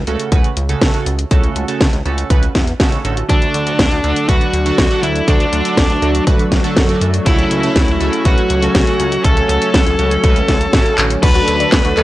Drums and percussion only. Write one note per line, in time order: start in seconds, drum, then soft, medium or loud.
0.07 closed hi-hat soft
0.20 closed hi-hat soft
0.32 kick loud
0.32 closed hi-hat medium
0.44 closed hi-hat soft
0.57 closed hi-hat medium
0.69 closed hi-hat soft
0.82 kick loud
0.82 snare loud
0.82 closed hi-hat medium
0.94 closed hi-hat soft
1.06 closed hi-hat medium
1.19 closed hi-hat soft
1.31 kick loud
1.31 closed hi-hat medium
1.43 closed hi-hat soft
1.56 closed hi-hat medium
1.68 closed hi-hat soft
1.81 kick loud
1.81 snare loud
1.81 closed hi-hat medium
1.93 closed hi-hat soft
2.06 closed hi-hat soft
2.18 closed hi-hat soft
2.30 kick loud
2.30 closed hi-hat medium
2.43 closed hi-hat soft
2.55 kick medium
2.55 snare medium
2.55 closed hi-hat medium
2.67 closed hi-hat soft
2.80 kick loud
2.80 snare loud
2.80 closed hi-hat medium
2.92 closed hi-hat soft
3.05 closed hi-hat medium
3.17 closed hi-hat soft
3.29 kick loud
3.29 closed hi-hat medium
3.42 closed hi-hat soft
3.54 closed hi-hat medium
3.67 closed hi-hat soft
3.79 kick loud
3.79 snare loud
3.79 closed hi-hat medium
3.92 closed hi-hat soft
4.04 closed hi-hat soft
4.16 closed hi-hat soft
4.29 kick loud
4.29 closed hi-hat medium
4.41 closed hi-hat soft
4.53 closed hi-hat medium
4.66 closed hi-hat soft
4.78 kick loud
4.78 snare loud
4.78 closed hi-hat medium
4.91 closed hi-hat soft
5.03 closed hi-hat medium
5.16 closed hi-hat soft
5.28 kick loud
5.28 closed hi-hat medium
5.40 closed hi-hat soft
5.53 closed hi-hat medium
5.65 closed hi-hat soft
5.77 kick loud
5.77 snare loud
5.77 closed hi-hat medium
5.90 closed hi-hat soft
6.02 closed hi-hat soft
6.15 closed hi-hat soft
6.27 kick loud
6.27 closed hi-hat medium
6.39 closed hi-hat soft
6.52 kick medium
6.52 snare medium
6.52 closed hi-hat medium
6.64 closed hi-hat soft
6.77 kick loud
6.77 snare loud
6.77 closed hi-hat medium
6.89 closed hi-hat soft
7.01 closed hi-hat medium
7.14 closed hi-hat soft
7.26 kick loud
7.26 closed hi-hat loud
7.39 closed hi-hat soft
7.51 closed hi-hat medium
7.63 closed hi-hat soft
7.76 kick loud
7.76 snare loud
7.76 closed hi-hat loud
7.88 closed hi-hat soft
8.01 closed hi-hat soft
8.13 closed hi-hat soft
8.25 kick loud
8.25 closed hi-hat medium
8.38 closed hi-hat soft
8.50 closed hi-hat medium
8.62 closed hi-hat soft
8.75 kick loud
8.75 snare loud
8.75 closed hi-hat loud
8.87 closed hi-hat soft
9.00 closed hi-hat medium
9.12 closed hi-hat soft
9.24 kick loud
9.24 closed hi-hat medium
9.37 closed hi-hat soft
9.49 closed hi-hat medium
9.62 closed hi-hat soft
9.74 kick loud
9.74 snare loud
9.74 closed hi-hat loud
9.87 closed hi-hat soft
9.99 closed hi-hat soft
10.11 closed hi-hat soft
10.24 kick loud
10.24 closed hi-hat medium
10.36 closed hi-hat soft
10.48 kick medium
10.48 snare medium
10.48 closed hi-hat medium
10.61 closed hi-hat soft
10.73 kick loud
10.73 snare loud
10.73 closed hi-hat medium
10.86 closed hi-hat soft
10.98 clap loud
10.98 closed hi-hat medium
11.10 closed hi-hat soft
11.23 kick loud
11.23 closed hi-hat loud
11.23 crash loud
11.35 closed hi-hat soft
11.48 closed hi-hat medium
11.60 closed hi-hat soft
11.72 kick loud
11.72 snare loud
11.72 clap medium
11.72 closed hi-hat loud
11.85 closed hi-hat soft
11.97 clap medium
11.97 closed hi-hat soft